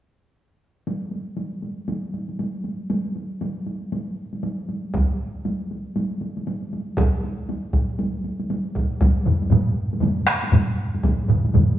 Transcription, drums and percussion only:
0.87 taiko high medium
1.02 taiko high soft
1.11 taiko high soft
1.27 taiko high soft
1.37 taiko high soft
1.52 taiko high soft
1.62 taiko high soft
1.88 taiko high soft
2.03 taiko high soft
2.14 taiko high soft
2.29 taiko high soft
2.39 taiko high soft
2.55 taiko high soft
2.64 taiko high soft
2.80 taiko high soft
2.90 taiko high medium
3.05 taiko high soft
3.16 taiko high soft
3.31 taiko high soft
3.41 taiko high medium
3.57 taiko high soft
3.67 taiko high soft
3.82 taiko high soft
3.92 taiko high medium
4.07 taiko high soft
4.33 taiko high soft
4.43 taiko high soft
4.59 taiko high soft
4.69 taiko high soft
4.84 taiko high soft
4.94 taiko medium
4.94 taiko high soft
5.09 taiko high soft
5.35 taiko high soft
5.45 taiko high soft
5.61 taiko high soft
5.71 taiko high soft
5.86 taiko high soft
5.96 taiko high soft
6.11 taiko high soft
6.21 taiko high soft
6.37 taiko high soft
6.47 taiko high soft
6.63 taiko high soft
6.73 taiko high soft
6.88 taiko high soft
6.97 taiko medium
6.97 taiko high medium
7.14 taiko high soft
7.24 taiko high soft
7.40 taiko high soft
7.49 taiko high medium
7.65 taiko high soft
7.73 taiko medium
7.73 taiko high soft
7.90 taiko high soft
7.99 taiko high medium
8.14 taiko high soft
8.24 taiko high soft
8.39 taiko high soft
8.50 taiko high soft
8.66 taiko high soft
8.75 taiko medium
8.75 taiko high soft
8.91 taiko high soft
9.01 taiko medium
9.01 taiko high medium
9.25 taiko low-mid medium
9.25 taiko mid medium
9.42 taiko high soft
9.50 taiko low-mid medium
9.50 taiko mid medium
9.50 taiko high medium
9.93 taiko high soft
10.01 taiko low-mid medium
10.01 taiko mid medium
10.01 taiko high medium
10.27 taiko rim medium
10.44 taiko high soft
10.52 taiko low-mid medium
10.52 taiko mid medium
10.52 taiko high medium
10.94 taiko high soft
11.03 taiko medium
11.03 taiko high medium
11.28 taiko low-mid medium
11.28 taiko mid medium
11.45 taiko high soft
11.54 taiko low-mid medium
11.54 taiko mid medium
11.54 taiko high medium

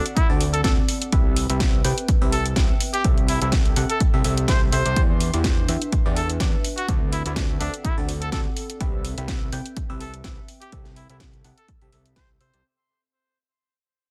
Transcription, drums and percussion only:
0.06 closed hi-hat medium
0.17 kick loud
0.17 closed hi-hat medium
0.41 open hi-hat loud
0.54 closed hi-hat medium
0.64 kick loud
0.64 snare loud
0.64 closed hi-hat medium
0.89 open hi-hat loud
1.02 closed hi-hat medium
1.12 kick loud
1.12 closed hi-hat medium
1.36 open hi-hat loud
1.50 closed hi-hat medium
1.60 kick loud
1.60 snare loud
1.60 closed hi-hat medium
1.85 open hi-hat loud
1.98 closed hi-hat medium
2.08 kick loud
2.08 closed hi-hat medium
2.32 open hi-hat loud
2.46 closed hi-hat medium
2.56 kick loud
2.56 snare loud
2.56 closed hi-hat medium
2.80 open hi-hat loud
2.94 closed hi-hat soft
3.04 kick loud
3.04 closed hi-hat medium
3.18 closed hi-hat soft
3.28 open hi-hat loud
3.42 closed hi-hat medium
3.52 kick loud
3.52 snare loud
3.52 closed hi-hat medium
3.65 closed hi-hat soft
3.76 open hi-hat loud
3.90 closed hi-hat soft
4.00 kick loud
4.00 closed hi-hat medium
4.24 open hi-hat loud
4.38 closed hi-hat medium
4.48 kick loud
4.48 snare loud
4.48 closed hi-hat medium
4.72 open hi-hat loud
4.86 closed hi-hat medium
4.96 kick loud
4.96 closed hi-hat medium
5.20 open hi-hat loud
5.34 closed hi-hat medium
5.44 kick loud
5.44 snare loud
5.44 closed hi-hat medium
5.68 open hi-hat loud
5.82 closed hi-hat soft
5.92 kick loud
5.92 closed hi-hat medium
6.16 open hi-hat loud
6.30 closed hi-hat medium
6.40 kick loud
6.40 snare loud
6.40 closed hi-hat medium
6.64 open hi-hat loud
6.78 closed hi-hat soft
6.89 kick loud
6.89 closed hi-hat medium
7.13 open hi-hat loud
7.26 closed hi-hat medium
7.36 kick loud
7.36 snare loud
7.36 closed hi-hat medium
7.61 open hi-hat loud
7.74 closed hi-hat medium
7.85 kick loud
7.85 closed hi-hat medium
8.09 open hi-hat loud
8.22 closed hi-hat medium
8.32 kick loud
8.32 snare loud
8.32 closed hi-hat medium
8.57 open hi-hat loud
8.70 closed hi-hat medium
8.81 kick loud
8.81 closed hi-hat medium
9.05 open hi-hat loud
9.18 closed hi-hat medium
9.28 kick loud
9.28 snare loud
9.28 closed hi-hat medium
9.52 open hi-hat loud
9.66 closed hi-hat medium
9.77 kick loud
9.77 closed hi-hat medium
10.01 open hi-hat loud
10.14 closed hi-hat medium
10.24 kick loud
10.24 snare loud
10.24 closed hi-hat medium
10.48 open hi-hat loud
10.62 closed hi-hat medium
10.72 kick loud
10.72 closed hi-hat medium
10.85 snare soft
10.85 closed hi-hat soft
10.96 open hi-hat loud
11.10 closed hi-hat medium
11.20 kick loud
11.20 snare loud
11.20 closed hi-hat medium
11.34 closed hi-hat soft
11.44 open hi-hat loud
11.58 closed hi-hat medium
11.68 kick loud
11.68 closed hi-hat medium
11.82 closed hi-hat soft
11.93 open hi-hat loud
12.06 closed hi-hat medium
12.16 kick loud
12.16 snare loud
12.16 closed hi-hat medium
12.41 open hi-hat loud
12.54 closed hi-hat medium

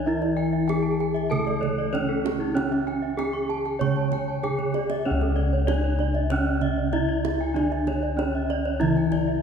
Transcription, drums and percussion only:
0.22 kendang slap soft
0.37 kendang slap soft
0.69 kendang high soft
1.00 kendang slap soft
1.16 kendang slap soft
1.32 kendang slap soft
1.32 kendang low soft
1.47 kendang slap soft
1.63 kendang slap soft
1.63 kendang low soft
1.95 kendang slap soft
1.95 kendang low soft
2.26 kendang slap soft
2.26 kendang high soft
2.57 kendang high soft
2.72 kendang slap soft
2.88 kendang slap soft
3.19 kendang slap soft
3.19 kendang high soft
3.50 kendang slap soft
3.65 kendang slap soft
3.81 kendang slap soft
3.81 kendang low medium
3.96 kendang slap soft
4.12 kendang slap soft
4.12 kendang low soft
4.44 kendang low soft
4.59 kendang low soft
4.74 kendang high soft
4.90 kendang high soft
5.21 kendang slap soft
5.37 kendang slap soft
5.68 kendang high soft
5.99 kendang slap soft
6.15 kendang slap soft
6.30 kendang slap soft
6.30 kendang low soft
6.46 kendang slap soft
6.61 kendang slap soft
6.61 kendang low soft
6.93 kendang slap soft
6.93 kendang low soft
7.25 kendang slap soft
7.25 kendang high soft
7.56 kendang high soft
7.72 kendang slap soft
7.87 kendang slap soft
7.87 kendang high soft
8.19 kendang high soft
8.50 kendang slap soft
8.65 kendang slap soft
8.81 kendang slap soft
8.81 kendang low soft
8.97 kendang slap soft
9.12 kendang slap soft
9.12 kendang low soft

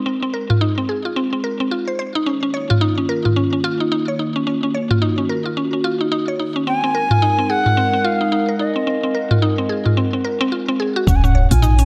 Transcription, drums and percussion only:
0.50 mid tom medium
2.71 mid tom medium
3.26 mid tom medium
4.91 mid tom medium
7.11 mid tom medium
7.66 mid tom medium
9.31 mid tom medium
9.86 mid tom medium
11.07 kick loud
11.07 cabasa medium
11.24 mid tom medium
11.24 cabasa soft
11.34 udu medium
11.51 kick loud
11.51 open hi-hat medium
11.51 cabasa medium
11.62 mid tom medium
11.62 cabasa medium
11.78 open hi-hat soft
11.78 cabasa soft

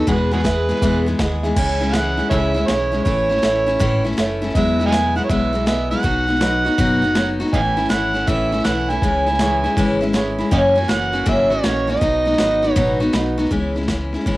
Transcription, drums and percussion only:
0.07 kick loud
0.07 snare soft
0.32 snare soft
0.39 snare soft
0.45 kick medium
0.45 snare loud
0.45 hi-hat pedal medium
0.69 snare soft
0.76 snare soft
0.82 kick loud
0.82 snare soft
1.07 snare soft
1.19 kick medium
1.19 snare loud
1.19 hi-hat pedal medium
1.43 snare soft
1.56 kick loud
1.56 snare soft
1.56 crash loud
1.81 snare soft
1.87 snare soft
1.93 snare loud
1.93 hi-hat pedal medium
2.18 snare soft
2.31 kick loud
2.31 snare soft
2.56 snare soft
2.68 snare loud
2.68 hi-hat pedal medium
2.93 snare soft
3.06 kick loud
3.06 snare soft
3.30 snare soft
3.37 snare soft
3.43 snare loud
3.43 hi-hat pedal medium
3.68 snare soft
3.80 kick loud
3.80 snare soft
4.05 snare soft
4.11 snare soft
4.18 snare loud
4.18 hi-hat pedal medium
4.42 snare soft
4.49 snare soft
4.55 kick loud
4.55 snare soft
4.80 snare soft
4.86 snare soft
4.92 snare loud
4.92 hi-hat pedal medium
5.17 snare soft
5.30 kick loud
5.30 snare soft
5.54 snare soft
5.67 snare loud
5.67 hi-hat pedal medium
5.92 snare soft
5.98 snare soft
6.04 kick loud
6.04 snare soft
6.29 snare soft
6.35 snare soft
6.41 snare loud
6.41 hi-hat pedal medium
6.66 snare soft
6.78 kick loud
6.78 snare soft
7.02 snare soft
7.15 snare loud
7.15 hi-hat pedal medium
7.40 snare soft
7.46 snare soft
7.53 kick loud
7.53 snare soft
7.77 snare soft
7.84 snare soft
7.90 snare loud
7.90 hi-hat pedal medium
8.14 snare soft
8.28 kick loud
8.28 snare soft
8.52 snare soft
8.59 snare soft
8.65 snare loud
8.65 hi-hat pedal medium
8.89 snare soft
9.02 kick loud
9.02 snare soft
9.26 snare soft
9.33 snare soft
9.39 snare loud
9.39 hi-hat pedal medium
9.64 snare soft
9.77 kick loud
9.77 snare soft
10.01 snare soft
10.14 snare loud
10.14 hi-hat pedal medium
10.39 snare soft
10.52 kick loud
10.52 snare soft
10.76 snare soft
10.83 snare soft
10.89 snare loud
10.89 hi-hat pedal medium
11.14 snare soft
11.26 kick loud
11.26 snare soft
11.51 snare soft
11.64 snare loud
11.64 hi-hat pedal medium
11.88 snare soft
11.95 snare soft
12.01 kick loud
12.01 snare soft
12.26 snare soft
12.32 snare soft
12.38 snare loud
12.38 hi-hat pedal medium
12.63 snare soft
12.76 kick loud
12.76 snare soft
13.01 snare soft
13.13 snare loud
13.13 hi-hat pedal medium
13.38 snare soft
13.45 snare soft
13.51 kick loud
13.51 snare soft
13.75 snare soft
13.82 snare soft
13.88 kick medium
13.88 snare medium
13.88 hi-hat pedal medium
14.13 snare soft
14.19 snare soft
14.26 kick loud
14.26 snare soft

